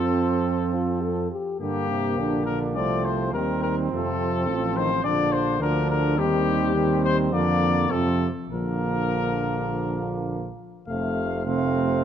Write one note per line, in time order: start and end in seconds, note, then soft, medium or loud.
0.00 1.28 F2 soft
0.00 1.32 F3 soft
0.00 0.74 C4 soft
0.00 1.29 C4 soft
0.00 1.28 A4 medium
0.73 1.03 F4 soft
1.02 1.30 A4 soft
1.31 1.59 G4 soft
1.60 2.20 G2 soft
1.60 1.92 D3 soft
1.60 2.78 A#3 soft
1.60 2.20 A#3 soft
1.60 2.44 G4 medium
1.91 2.21 C3 soft
2.18 2.78 A#1 soft
2.18 2.48 D3 soft
2.18 2.78 D4 soft
2.46 2.78 D3 soft
2.46 2.59 A#4 medium
2.75 3.35 C2 soft
2.75 3.36 F3 soft
2.75 3.33 A3 soft
2.75 3.33 C4 soft
2.75 3.06 D5 medium
3.05 3.33 C5 soft
3.33 3.91 D#2 soft
3.33 3.92 D#3 soft
3.33 3.90 G3 soft
3.33 5.07 C4 soft
3.33 3.62 A#4 medium
3.63 3.76 A#4 medium
3.91 4.50 F2 soft
3.91 4.50 C3 soft
3.91 4.47 F3 soft
3.91 4.78 A4 medium
4.47 5.04 A1 soft
4.47 5.03 F3 soft
4.47 4.77 F3 soft
4.76 4.90 D#3 soft
4.76 5.03 C5 medium
5.04 5.62 A#1 soft
5.04 5.63 D3 soft
5.04 5.62 F3 soft
5.04 5.60 D4 soft
5.04 5.34 D5 medium
5.32 5.61 C5 medium
5.60 6.19 D2 soft
5.60 6.19 D3 soft
5.60 6.17 F3 soft
5.60 6.19 D4 soft
5.60 5.89 A#4 medium
5.90 6.20 A#4 medium
6.17 7.33 D#2 soft
6.17 6.74 D#3 medium
6.17 7.34 G3 medium
6.17 6.75 C4 soft
6.17 7.04 G4 medium
6.75 7.34 D#3 soft
6.75 7.35 C4 soft
7.04 7.17 C5 medium
7.32 7.89 F2 soft
7.32 7.92 D3 medium
7.32 7.74 F3 soft
7.32 7.93 A#3 soft
7.32 7.92 D5 medium
7.90 8.28 F2 soft
7.90 8.29 C3 soft
7.90 8.29 F3 soft
7.90 8.30 C4 soft
7.90 8.30 A4 medium
8.49 10.54 A#1 soft
8.49 10.55 D3 soft
8.49 10.55 F3 soft
8.49 10.55 A#3 soft
8.49 10.25 A#4 medium
10.87 12.04 F1 soft
10.87 11.43 C3 soft
10.87 11.42 A3 soft
10.87 11.42 F5 soft
11.45 12.04 C3 soft
11.45 12.04 A3 soft
11.45 12.04 C4 medium
11.45 12.04 F5 soft